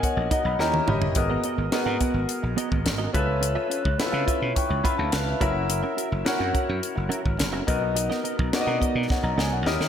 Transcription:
Already playing: B3 D#4 F#4 A#4 D#5 G#5
0.03 C#5 F#5, kick, closed hi-hat
0.17 A#1, muted clean electric guitar stroke
0.31 D#4 F#4 A#4 D#5 F#5 A#5, kick, closed hi-hat
0.45 B1 F#5 B5, muted clean electric guitar stroke
0.59 D#2 C#4 E4 G4 A#4 D#5 A#5, muted clean electric guitar stroke, snare
0.74 muted clean electric guitar stroke, high tom
0.87 G1 C#4 E4 G4 A#4 C#5 D#5 E5 B5, mid tom
1.02 muted clean electric guitar stroke, floor tom
1.15 G#1 B3 F#4 G#4 A#4 D#5, muted clean electric guitar stroke, kick, closed hi-hat
1.30 B3 F#4 A#4 D#5
1.44 B3 F#4 A#4 D#5, closed hi-hat
1.58 G#1, muted clean electric guitar stroke
1.72 B3 F#4 G#4 A#4 D#5, muted clean electric guitar stroke, snare, closed hi-hat
1.86 G#2 B3 F#4 A#4 F#5
2.00 B3 F#4 A#4 F#5, kick, closed hi-hat
2.14 G#1, muted clean electric guitar stroke
2.29 closed hi-hat
2.43 A#1, muted clean electric guitar stroke
2.56 B3 F#4 A#4 D#5, closed hi-hat
2.72 G#1, muted clean electric guitar stroke, kick
2.85 G#1, muted clean electric guitar stroke, snare, closed hi-hat
2.98 B3 F#4 A#4 D#5
3.13 C#2 C#4 F4 A4 B4 E5, kick, closed hi-hat
3.27 muted clean electric guitar stroke
3.41 muted clean electric guitar stroke, closed hi-hat
3.55 C#4 F4 B4 E5
3.69 C#4 F4 B4 E5, closed hi-hat
3.84 C#2, muted clean electric guitar stroke, kick
3.98 C#4 E4 A4 B4 E5, muted clean electric guitar stroke, snare, closed hi-hat
4.06 F4
4.12 C#3 C#4 F4 B4 F5
4.26 C#4 F4 B4 E5, kick, closed hi-hat
4.42 B2, muted clean electric guitar stroke
4.56 G5 C#6, kick, closed hi-hat
4.69 C#2, muted clean electric guitar stroke
4.84 C#4 F4 B4 E5 F5 B5, kick, closed hi-hat
4.98 D2 E5 A5, muted clean electric guitar stroke
5.12 C#2 B4 F5, snare, closed hi-hat
5.27 B4 E5, muted clean electric guitar stroke
5.40 F#1 C#4 E4 F#4 A#4 E5 F#5, kick, closed hi-hat
5.55 muted clean electric guitar stroke
5.69 muted clean electric guitar stroke, closed hi-hat
5.83 C#4 F#4 A#4 E5
5.97 C#4 F#4 A#4 E5, closed hi-hat
6.11 F#1, muted clean electric guitar stroke
6.25 C#4 E4 F#4 A#4 F#5, muted clean electric guitar stroke, snare, closed hi-hat
6.39 F#2 C#4 F#4 A#4 F#5
6.53 C#4 F#4 A#4 F#5, kick, closed hi-hat
6.67 F#2, muted clean electric guitar stroke
6.83 closed hi-hat
6.96 F#1, muted clean electric guitar stroke
7.09 C#4 F#4 A#4 E5, closed hi-hat
7.23 G#1, muted clean electric guitar stroke, kick
7.38 F#1, muted clean electric guitar stroke, snare, closed hi-hat
7.53 C#4 F#4 A#4 E5
7.66 B1 B3 D#4 F#4 A#4 D#5, muted clean electric guitar stroke, kick, closed hi-hat
7.81 muted clean electric guitar stroke
7.95 muted clean electric guitar stroke, closed hi-hat
8.10 B3 F#4 A#4 D#5, snare
8.24 B3 F#4 A#4 D#5, closed hi-hat
8.39 B1, muted clean electric guitar stroke, kick
8.53 B3 D#4 F#4 A#4 D5, muted clean electric guitar stroke, muted slap bass stroke, snare, closed hi-hat
8.61 D#5
8.67 B2 B3 F#4 A#4 F#5
8.80 B3 F#4 A#4 D#5, kick, closed hi-hat
8.94 B2, muted clean electric guitar stroke
9.08 C#5 F#5, muted clean electric guitar stroke, kick, snare
9.23 B1 D#5 A#5, muted clean electric guitar stroke
9.37 C#2 B3 F#4 A#4 D#5 G#5, snare
9.52 B1 C#5 F#5, muted clean electric guitar stroke
9.66 D#2 C#4 E4 G4 A#4 D#5, snare
9.80 D#3, muted clean electric guitar stroke, snare

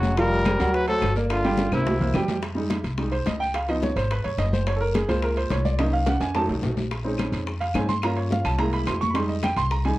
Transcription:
Already playing: F1 C#3 F#3 F#4 F#5
0.03 high conga, short guiro
0.17 F3 G3 F4 A#4 F5, high bongo, high conga, high timbale, long guiro
0.32 high bongo, high conga
0.45 G#3 G#4 C5, high bongo, high conga, high timbale, short guiro, claves
0.59 D2 F#3 F#4 F#5, high bongo, high timbale, short guiro
0.74 F#3 B4, high bongo, high conga, long guiro
0.88 F#3 A3 A4 C5, high bongo, high conga, high timbale
1.01 G1, high bongo, low bongo, high conga, high timbale, low timbale, short guiro, claves
1.16 A#3 A#4 D5, short guiro
1.30 D3 F4, high bongo, high conga, high timbale, long guiro, claves
1.44 G3 G4 G5, high bongo, high conga, high timbale
1.57 high bongo, high conga, high timbale, short guiro
1.72 C2 C3 A#3 E4 A#4 C5, high bongo, high conga, high timbale, short guiro, claves
1.85 high bongo, high conga, low timbale, long guiro
2.00 A#3 A#4 C5, high bongo, low conga
2.14 F2 G3 G4 G5, high bongo, low bongo, low conga, low timbale, short guiro, claves
2.28 low conga, low timbale, short guiro
2.42 high bongo, high conga, high timbale, long guiro
2.55 G3 G#3 D#4, high bongo, high conga
2.70 high bongo, high conga, high timbale, short guiro
2.84 C2, high bongo, high conga, high timbale, short guiro
2.98 G3 G#3 D#4, high bongo, high conga, long guiro
3.12 C5, high bongo, high conga, high timbale
3.26 C#2 D#5, high bongo, low bongo, high conga, high timbale, short guiro
3.40 G5, short guiro
3.54 F5, high bongo, high conga, high timbale, long guiro
3.68 F3 B3 D#4 D#5, high bongo, high conga, high timbale
3.83 C#5, high bongo, high conga, short guiro
3.96 G#1 C5, high bongo, high conga, high timbale, short guiro
4.11 B4, high bongo, high conga, high timbale, long guiro
4.24 G1 C#5, high bongo, high conga, high timbale
4.38 F#1 D#5, high bongo, low bongo, high conga, high timbale, short guiro
4.53 C5, high conga, short guiro
4.67 C#5, high bongo, high conga, high timbale, long guiro
4.76 A4
4.81 A#4, high bongo, high conga
4.95 G#4, high bongo, high conga, high timbale, short guiro
5.08 C#2 G#3 A#3 F4 C5, high bongo, high conga, high timbale, short guiro
5.22 A#4, high bongo, high conga, long guiro
5.36 C5, high bongo, high conga, high timbale
5.50 C2 C#5, high bongo, low bongo, high conga, high timbale, short guiro
5.65 D5, high conga, short guiro
5.78 F#3 A#3 D#4 D#5, high bongo, high conga, high timbale, long guiro
5.92 F5, high bongo, high conga
6.06 F#5, high bongo, high conga, high timbale, short guiro
6.20 F2 G#5, high bongo, high conga, high timbale, short guiro
6.34 F#3 A3 D#4 A5, high bongo, high conga, low timbale, long guiro
6.48 C2, high bongo, high conga, low timbale
6.62 A#1, high bongo, low bongo, high conga, low timbale, short guiro
6.77 high conga, low timbale, short guiro
6.91 high bongo, high conga, high timbale, long guiro
7.04 G#3 C4 C#4 D#4, high bongo, high conga
7.18 high bongo, high conga, high timbale, short guiro, claves
7.32 F2, high bongo, high conga, high timbale, short guiro
7.47 high bongo, high conga, long guiro
7.60 F5, high bongo, high conga, high timbale
7.74 G2 G#3 C4 C#4 D#4 G#5, high bongo, low bongo, high conga, high timbale, short guiro, claves
7.89 C6, high conga, short guiro
8.02 A#3 C#4 F4 A#5, high bongo, high conga, high timbale, long guiro, claves
8.17 C#5, high bongo, high conga, high timbale
8.31 F5, high bongo, high conga, short guiro
8.45 C2 A5, high bongo, high conga, high timbale, short guiro, claves
8.58 G#3 A#3 E4 A#5, high bongo, high conga, high timbale
8.72 B5, high bongo, high conga, high timbale
8.87 F2 C6, high bongo, low bongo, high conga, high timbale, low timbale, short guiro, claves
9.01 C#6, high conga, short guiro
9.10 G3 B5
9.14 G#3 D#4 C6, high bongo, high conga, high timbale, long guiro
9.29 D#5, high bongo, high conga
9.43 G5, high bongo, high conga, high timbale, short guiro, claves
9.56 C2 C6, high bongo, high conga, high timbale, short guiro
9.71 A#5, high bongo, high conga, long guiro
9.85 G3 G#3 D#4 G#5, high bongo, high conga, high timbale

